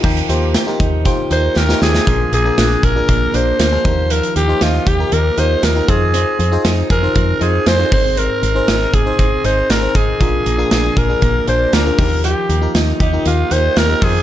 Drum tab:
CC |x---------------|----------------|----------------|----------------|
HH |-xx-x-x-x-x-----|x-x-x-x-x-x-x-x-|xxx-x-x-x-x-x-x-|x-x-x-x-x-x-x-o-|
SD |----o-------oooo|----o-------o---|----o-------o---|----o-------o---|
BD |o-----o-o-------|o-----o-o-----o-|------o-------o-|------o-o-----o-|

CC |----------------|----------------|----------------|
HH |x-x-x-x-x-x-x-x-|x-x-x-x-x-x-x-o-|x-x-x-x-x-x-x-o-|
SD |----o-------o---|----o-------o---|----o-------o---|
BD |------o-o-----o-|o-----o-o-----o-|------o-------o-|